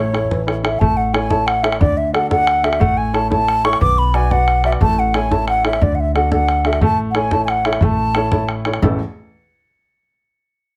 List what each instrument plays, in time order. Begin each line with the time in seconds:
Already playing: upright bass A1, grand piano A3 E4 A4 C#5, flute C#5
0.13 grand piano E4 A4 C#5, bodhran
0.23 bodhran
0.31 grand piano E3, bodhran
0.47 grand piano E4 A4 C#5, bodhran
0.64 grand piano E4 A4 C#5, flute E5, bodhran
0.79 upright bass A1, grand piano A3, flute A5, bodhran
0.97 flute F#5
1.14 grand piano E4 A4 C#5, flute G#5, bodhran
1.30 grand piano E4 A4 C#5, flute A5, bodhran
1.47 flute F#5, bodhran
1.63 grand piano E4 A4 C#5, flute E5, bodhran
1.72 bodhran
1.80 upright bass D2, grand piano D3, flute D5, bodhran
1.97 flute E5
2.13 grand piano D4 F#4 A4, flute F#5, bodhran
2.30 grand piano D4 F#4 A4, flute F#5, bodhran
2.47 bodhran
2.63 grand piano D4 F#4 A4, flute E5, bodhran
2.73 bodhran
2.80 upright bass A1, grand piano A3, flute F#5, bodhran
2.97 flute G#5
3.13 grand piano E4 A4 C#5, flute A5, bodhran
3.30 grand piano E4 A4 C#5, flute A5, bodhran
3.48 bodhran
3.64 grand piano E4 A4 C#5, flute C#6, bodhran
3.73 bodhran
3.81 upright bass B1, grand piano B3, flute D6, bodhran
3.98 flute B5
4.14 grand piano F#4 B4 D5, flute G#5, bodhran
4.30 grand piano F#4 B4 D5, flute F#5, bodhran
4.48 bodhran
4.64 grand piano F#4 B4 D5, flute E5, bodhran
4.72 bodhran
4.81 upright bass A1, grand piano A3, flute A5, bodhran
4.99 flute F#5
5.14 grand piano E4 A4 C#5, flute G#5, bodhran
5.31 grand piano E4 A4 C#5, flute A5, bodhran
5.48 flute F#5, bodhran
5.64 grand piano E4 A4 C#5, flute E5, bodhran
5.73 bodhran
5.81 upright bass D2, grand piano D3, flute D5, bodhran
5.95 flute F#5
6.00 flute E5
6.15 grand piano D4 F#4 A4, flute F#5, bodhran
6.31 grand piano D4 F#4 A4, flute F#5, bodhran
6.49 bodhran
6.65 grand piano D4 F#4 A4, flute E5, bodhran
6.73 bodhran
6.81 upright bass A1, grand piano A3, flute A5, bodhran
7.11 flute F#5
7.15 grand piano E4 A4 C#5, flute G#5, bodhran
7.31 grand piano E4 A4 C#5, flute A5, bodhran
7.45 flute G#5, bodhran
7.50 flute F#5
7.65 grand piano E4 A4 C#5, flute E5, bodhran
7.73 bodhran
7.81 upright bass A1, grand piano A3, flute A5, bodhran
8.15 grand piano E4 A4 C#5, bodhran
8.32 grand piano E4 A4 C#5, bodhran
8.49 bodhran
8.65 grand piano E4 A4 C#5, bodhran
8.74 bodhran
8.82 grand piano A1 E2 C#3 A3 E4 A4, upright bass A1, bodhran